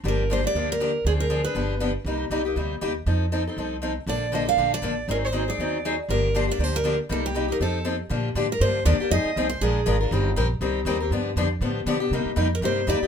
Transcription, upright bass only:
X:1
M:4/4
L:1/8
Q:"Swing" 1/4=238
K:Gm
V:1 name="Upright bass" clef=bass
G,,,4 D,,4 | D,,4 G,,,4 | C,,2 C,,2 D,,2 E,,2 | F,,4 C,,4 |
B,,,4 B,,,2 A,,,2 | _A,,,4 E,,4 | G,,,4 D,,4 | C,,4 F,,4 |
[K:Bb] B,,2 A,,2 G,,2 E,, z | F,, z C,,2 B,,,2 _A,,,2 | G,,,2 B,,,2 C,,2 E,,2 | G,,2 F,,2 A,,2 =B,,2 |
C, z F,,2 G,,2 E,, z |]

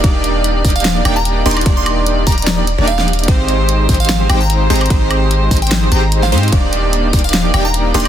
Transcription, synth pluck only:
X:1
M:4/4
L:1/16
Q:"Swing 16ths" 1/4=148
K:Eb
V:1 name="Synth pluck"
z6 z f f z g b2 z c'2 | z c'2 z3 b b z4 f4 | z6 z f f z g b2 z b2- | b4 z3 g2 z b2 z f3 |
z6 z f f z g b2 z c'2 |]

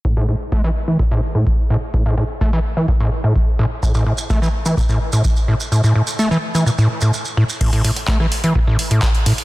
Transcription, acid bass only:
X:1
M:4/4
L:1/16
Q:1/4=127
K:Cmix
V:1 name="Acid bass" clef=bass
A,, A,, A,, z A, E, z E, B,, A,, z A,, z2 A,, z | A,, A,, A,, z A, E, z E, B,, A,, z A,, z2 A,, z | A,, A,, A,, z A, E, z E, B,, A,, z A,, z2 A,, z | A,, A,, A,, z A, E, z E, B,, A,, z A,, z2 A,, z |
A,, A,, A,, z A, E, z E, B,, A,, z A,, z2 A,, z |]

